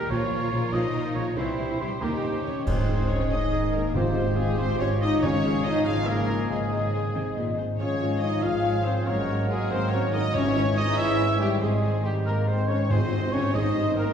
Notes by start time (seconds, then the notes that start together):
Already playing: A#2 D#3 G3 D#4 G4 A#4
0.09 A#1 A#2 F3 A#3 F4 A#4 C#5
0.13 A#3 F4
0.31 A#1 F3 A#3
0.52 A#1 C#3 F3
0.73 A#1 F3 A#3 D#4 D#5
0.95 A#1 F3
1.15 A#1 C#3 F3 F4 C#5
1.36 C2 G2 C3 E3 G3 C4 E4 G4 C5
1.58 C2 E3 G3
1.79 C2 E3 G3 E4 G4 C5
2.01 D#2 A#2 D#3 A#3 C#4 D#4 G4 A#4
2.22 D#2 D#3 G3 C4 C#4 C5
2.44 D#2 D#3 C#4 D#4 C#5
2.65 G#1 G#2 D#3 C4 D#4 G#4 C5 D#5, concert bass drum, crash
2.77 D#3
2.87 C4 G#4 C5
2.98 D#4
3.08 C4 C#4 G#4 C5 C#5
3.19 C5
3.29 G#1 G#2 G#4 C5 D#5
3.34 D#4
3.40 C5
3.51 G#4 C5 D#5
3.72 A#3 D#4 G#4 A#4 C5
3.84 C4
3.93 G#1 G#2 C4 F4 G4 C5 F5
4.05 G#3
4.15 C4 F4 G4
4.27 F4
4.36 G#3 F4 G4 G#4
4.47 C5
4.58 G#1 G#2 C4 F4 G4 C5
4.68 G5
4.79 C#4 F4 G4 C#5 F5
4.90 C5
5.00 D#4 F4 G4 D#5
5.21 G#1 G#2 C#3 F3 C#4 F4 G#4 C#5
5.32 F3
5.43 G#3 F4 G#4
5.54 F4
5.64 D#4 F4 G#4 D#5
5.75 F4
5.84 G#1 G#2 F4 G#4 F5
5.96 G#5
6.06 A#3 F4 G#4 A#4
6.18 G#4
6.29 F4 G#4
6.40 G#3
6.50 G#1 G#2 D#3 G#3 G#4 C5 D#5
6.61 D#3
6.71 C4 G#4 C5
6.82 D#4
6.93 G#4 C5
7.03 C5
7.14 G#1 C3 C4 G#4 C5 D#5
7.26 G#5
7.36 A#2 G#4 C5 D#5
7.47 C5
7.57 G#2 G#4 C5
7.69 D#4
7.78 G#1 G#2 F3 C#4 F4 G#4 C#5 F5
7.90 G#3
8.00 C#4 F4 C#5
8.11 F4
8.21 D#4 F4 C#5 D#5
8.32 C#5
8.42 G#1 G#2 F4 C#5 F5
8.53 G#5
8.64 F4 C#5 F5
8.75 C#5
8.85 C4 F4 C5 C#5
8.96 F4
9.06 G#1 G#2 F#3 A#3 C#4 F#4 A#4 C#5 F#5
9.18 G#3
9.28 F#4 A#4
9.38 F#4
9.49 G#3 F#4 G#4 A#4
9.59 C#5
9.70 G#1 G#2 C4 F#4 A#4 C5 F#5
9.80 A#5
9.90 C#4 F#4 A#4 C#5 F#5
10.02 C#5
10.12 D#4 F#4 A#4 D#5
10.34 G#1 G#2 E3 C#4 E4 C#5 E5
10.44 G#3
10.55 C#4 E4 C#5
10.66 E4
10.77 D#4 E4 G#4 C#5 D#5
10.87 C#5
10.97 G#1 G#2 E4 C#5 E5
11.19 E4 C#5
11.30 C#5
11.40 G3 E4 G4 G#4 C#5
11.61 G#1 G#2 D#3 G#3 C4 G#4 C5 D#5
11.73 D#3
11.84 C4 G#4 C5
11.95 D#4
12.03 G3 G4 G#4 C5
12.16 C5
12.26 G#1 G#2 A#3 G#4 A#4 C5 D#5
12.38 C6
12.47 C4 G#4 C5 D#5
12.68 C#4 G#4 C5 C#5
12.73 G#2
12.82 D#4
12.86 G#2 G#4 C5
12.90 G#1 G#2 C4 G#4 C5 D#5, tam-tam
13.31 G#1 G#2 D#3 G#3 C#4 G#4 C#5
13.53 G#1 G#2 D#4 G#4 C5 D#5
13.75 G#1 G#2 G4
13.96 G#1 G#2 D#3 G#3 A#3 G#4 A#4
14.00 G#2
14.04 C4
14.09 F4